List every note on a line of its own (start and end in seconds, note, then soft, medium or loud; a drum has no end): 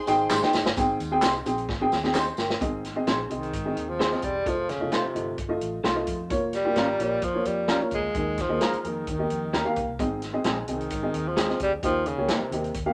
0.00 0.54 G#4 loud
0.00 0.73 C5 medium
0.00 0.73 C6 loud
0.07 0.26 G#1 medium
0.07 0.28 D#4 medium
0.07 0.28 G#4 medium
0.07 0.29 C5 medium
0.07 0.29 G5 loud
0.07 closed hi-hat medium
0.07 tambourine soft
0.30 0.41 G#1 loud
0.30 0.40 G#3 medium
0.30 0.40 D#4 medium
0.30 0.40 G4 medium
0.30 0.40 C5 medium
0.30 snare medium
0.30 clap loud
0.30 tambourine loud
0.42 0.63 D#4 medium
0.42 0.63 G#4 medium
0.42 0.63 C5 medium
0.42 0.64 G5 loud
0.42 snare medium
0.53 0.63 F#1 medium
0.53 snare loud
0.53 tambourine medium
0.65 0.75 G1 medium
0.65 snare loud
0.76 0.96 G#1 loud
0.76 1.42 G#2 medium
0.76 0.98 C4 medium
0.76 0.98 G#4 medium
0.76 0.98 G5 medium
0.76 kick loud
0.76 closed hi-hat medium
0.76 tambourine medium
1.00 1.19 D#2 medium
1.00 closed hi-hat medium
1.00 tambourine soft
1.11 1.32 C4 medium
1.11 1.32 G#4 medium
1.11 1.33 G5 loud
1.22 1.42 C2 medium
1.22 1.32 C4 medium
1.22 1.32 D#4 medium
1.22 1.32 G4 medium
1.22 1.32 C5 medium
1.22 snare loud
1.22 clap medium
1.22 closed hi-hat medium
1.22 tambourine medium
1.46 1.65 A#1 medium
1.46 1.67 C4 medium
1.46 1.67 G#4 medium
1.46 1.67 G5 medium
1.46 closed hi-hat medium
1.46 tambourine medium
1.58 closed hi-hat soft
1.69 1.94 G#1 medium
1.69 kick medium
1.69 snare medium
1.81 1.95 C4 medium
1.81 1.95 G#4 medium
1.81 1.95 G5 medium
1.92 2.29 D#2 medium
1.92 snare medium
1.92 tambourine medium
2.03 2.24 C4 medium
2.03 2.25 G#4 medium
2.03 2.16 G5 medium
2.03 snare medium
2.14 2.24 C4 medium
2.14 2.24 D#4 medium
2.14 2.25 G4 medium
2.14 2.25 C5 medium
2.14 2.37 D#5 medium
2.14 2.37 C6 medium
2.14 snare medium
2.14 clap medium
2.14 tambourine medium
2.37 2.57 G1 medium
2.37 2.82 A#4 soft
2.37 2.82 G5 medium
2.37 snare medium
2.37 tambourine soft
2.50 snare loud
2.61 2.98 G#1 medium
2.61 3.26 G#2 medium
2.61 2.82 C4 medium
2.61 2.82 G#4 medium
2.61 2.82 D#5 medium
2.61 kick loud
2.61 closed hi-hat medium
2.85 snare soft
2.85 closed hi-hat medium
2.96 3.17 C4 medium
2.96 3.17 G#4 medium
2.96 3.17 D#5 medium
3.07 3.26 A#1 medium
3.07 3.17 C4 medium
3.07 3.17 D#4 medium
3.07 3.17 G#4 medium
3.07 3.17 C5 medium
3.07 snare medium
3.07 closed hi-hat medium
3.30 3.50 C2 medium
3.30 3.91 D#3 medium
3.30 3.51 C4 medium
3.30 3.51 G#4 medium
3.30 3.52 D#5 medium
3.30 closed hi-hat medium
3.43 closed hi-hat soft
3.53 3.72 G#2 medium
3.53 kick medium
3.53 closed hi-hat medium
3.65 3.93 C4 medium
3.65 3.93 G#4 medium
3.65 3.94 D#5 medium
3.77 4.14 D#2 medium
3.77 closed hi-hat medium
3.89 4.25 F3 medium
3.99 4.09 C4 medium
3.99 4.09 D#4 medium
3.99 4.09 G#4 medium
3.99 4.10 C5 medium
3.99 snare medium
3.99 closed hi-hat medium
4.11 4.32 C4 medium
4.11 4.33 G#4 medium
4.11 4.33 D#5 medium
4.11 snare soft
4.22 4.42 E1 medium
4.22 4.50 G3 medium
4.22 kick medium
4.22 closed hi-hat medium
4.46 4.74 F1 medium
4.46 4.72 F3 medium
4.46 4.67 A3 medium
4.46 4.67 F4 medium
4.46 4.67 D#5 medium
4.46 kick medium
4.46 closed hi-hat medium
4.69 4.95 C#3 medium
4.69 snare soft
4.69 closed hi-hat medium
4.80 4.90 F1 medium
4.80 5.01 A3 medium
4.80 5.02 F4 medium
4.80 5.02 D#5 medium
4.92 5.39 C3 medium
4.92 5.01 A3 medium
4.92 5.02 D#4 medium
4.92 5.02 F4 medium
4.92 5.02 C5 medium
4.92 snare medium
4.92 closed hi-hat medium
5.05 muted fingered electric bass stroke soft
5.14 5.34 G1 medium
5.14 5.36 A3 medium
5.14 5.36 F4 soft
5.14 5.36 D#5 medium
5.14 closed hi-hat medium
5.38 5.57 G1 medium
5.38 kick medium
5.38 closed hi-hat medium
5.49 5.77 A3 medium
5.49 5.78 F4 medium
5.49 5.78 D#5 medium
5.61 5.80 A1 medium
5.61 closed hi-hat medium
5.84 6.03 C2 medium
5.84 5.94 A3 medium
5.84 5.94 D#4 medium
5.84 5.94 F4 medium
5.84 5.94 C5 medium
5.84 snare loud
5.84 closed hi-hat medium
5.95 6.17 A3 medium
5.95 6.17 F4 medium
5.95 6.17 D#5 medium
6.07 6.32 F2 medium
6.07 kick medium
6.07 closed hi-hat medium
6.30 6.68 F1 medium
6.30 6.51 A#3 medium
6.30 6.52 F4 medium
6.30 6.52 C#5 medium
6.30 kick loud
6.30 closed hi-hat medium
6.53 7.25 G3 loud
6.53 snare soft
6.53 closed hi-hat medium
6.65 6.86 A#3 medium
6.65 6.86 F4 medium
6.65 6.86 G4 medium
6.76 6.95 G#1 medium
6.76 6.86 A#3 medium
6.76 6.86 C#4 medium
6.76 6.86 F4 medium
6.76 6.87 A#4 medium
6.76 snare medium
6.76 closed hi-hat medium
6.99 7.18 A#1 medium
6.99 7.21 A#3 medium
6.99 7.21 F4 medium
6.99 7.21 C#5 medium
6.99 closed hi-hat medium
7.22 7.41 F2 medium
7.22 7.48 F3 medium
7.22 kick medium
7.22 closed hi-hat medium
7.34 7.62 A#3 medium
7.34 7.62 F4 medium
7.34 7.63 C#5 medium
7.45 7.84 F2 medium
7.45 7.69 G3 medium
7.45 closed hi-hat medium
7.68 7.81 G3 medium
7.68 7.78 A#3 medium
7.68 7.79 C#4 medium
7.68 7.79 F4 medium
7.68 7.79 A#4 medium
7.68 snare medium
7.68 closed hi-hat medium
7.80 8.01 A#3 medium
7.80 8.02 F4 medium
7.80 8.02 C#5 medium
7.91 8.11 D2 medium
7.91 8.43 G#3 medium
7.91 kick medium
7.91 closed hi-hat medium
8.15 8.43 D#2 medium
8.15 8.80 D#3 soft
8.15 8.36 A#3 medium
8.15 8.36 G#4 medium
8.15 8.37 D#5 medium
8.15 kick loud
8.15 closed hi-hat medium
8.38 8.80 F3 medium
8.38 kick medium
8.38 snare soft
8.38 closed hi-hat medium
8.49 8.59 D#2 medium
8.49 8.70 A#3 medium
8.49 8.71 G#4 medium
8.49 8.71 D#5 medium
8.61 8.71 G#3 medium
8.61 8.71 A#3 medium
8.61 8.71 D#4 medium
8.61 8.71 A#4 medium
8.61 snare medium
8.61 closed hi-hat medium
8.73 muted fingered electric bass stroke soft
8.73 closed hi-hat medium
8.80 8.90 F3 medium
8.80 9.05 A#3 medium
8.84 9.03 F2 medium
8.84 9.05 G#4 medium
8.84 9.06 A#4 medium
8.84 closed hi-hat medium
8.88 9.10 D#3 medium
9.07 9.26 D#2 medium
9.07 9.73 D#3 medium
9.07 9.74 D#3 medium
9.07 kick medium
9.07 closed hi-hat medium
9.18 9.47 A#3 medium
9.18 9.47 G4 medium
9.18 9.47 D#5 medium
9.30 9.50 F2 medium
9.30 closed hi-hat medium
9.53 9.63 D#2 medium
9.53 9.63 A#3 medium
9.53 9.63 D#4 medium
9.53 9.63 G4 medium
9.53 9.63 A#4 medium
9.53 snare medium
9.53 closed hi-hat medium
9.64 9.86 A#3 medium
9.64 9.86 G4 medium
9.64 9.86 F5 medium
9.76 9.86 C#2 medium
9.76 kick medium
9.76 closed hi-hat medium
9.88 9.97 C2 medium
9.99 10.37 G#1 loud
9.99 10.65 G#2 medium
9.99 10.21 C4 medium
9.99 10.21 G#4 medium
9.99 10.21 D#5 medium
9.99 kick medium
9.99 closed hi-hat medium
10.22 snare soft
10.22 closed hi-hat medium
10.33 10.55 C4 medium
10.33 10.55 G#4 medium
10.33 10.55 D#5 medium
10.44 10.64 A#1 medium
10.44 10.55 G#3 medium
10.44 10.55 C4 medium
10.44 10.55 D#4 medium
10.44 10.55 G#4 medium
10.44 snare loud
10.44 closed hi-hat medium
10.67 10.87 C2 medium
10.67 11.29 D#3 medium
10.67 10.89 C4 medium
10.67 10.89 G#4 medium
10.67 10.90 D#5 medium
10.67 closed hi-hat medium
10.81 closed hi-hat soft
10.90 11.10 G#2 medium
10.90 kick medium
10.90 closed hi-hat medium
11.02 11.31 C4 medium
11.02 11.31 G#4 medium
11.02 11.31 D#5 medium
11.14 11.51 D#2 medium
11.14 closed hi-hat medium
11.28 11.62 F3 medium
11.37 11.47 G#3 medium
11.37 11.47 C4 medium
11.37 11.47 D#4 medium
11.37 11.47 G#4 medium
11.37 snare loud
11.37 closed hi-hat medium
11.48 11.70 C4 medium
11.48 11.70 G#4 medium
11.48 11.70 D#5 medium
11.48 snare soft
11.60 11.79 D2 medium
11.60 11.73 G3 medium
11.60 kick medium
11.60 closed hi-hat medium
11.83 12.11 D#2 loud
11.83 12.48 D#3 medium
11.83 12.08 F3 loud
11.83 12.04 A#3 medium
11.83 12.04 G4 medium
11.83 12.05 D#5 medium
11.83 kick loud
11.83 closed hi-hat medium
12.06 12.32 C#3 medium
12.06 closed hi-hat medium
12.18 12.27 C#2 medium
12.18 12.39 A#3 medium
12.18 12.39 G4 medium
12.18 12.39 C#5 medium
12.28 12.76 C3 medium
12.28 12.38 G3 medium
12.28 12.39 A#3 medium
12.28 12.39 D#4 medium
12.28 12.39 G4 medium
12.28 snare medium
12.28 closed hi-hat medium
12.40 muted fingered electric bass stroke soft
12.51 12.70 D#2 medium
12.51 12.73 A#3 medium
12.51 12.74 G4 medium
12.51 12.74 D#5 medium
12.51 closed hi-hat medium
12.64 closed hi-hat soft
12.74 12.93 D#2 medium
12.74 kick medium
12.74 closed hi-hat medium
12.86 12.93 A#3 medium
12.86 12.93 G4 medium
12.86 12.93 F5 medium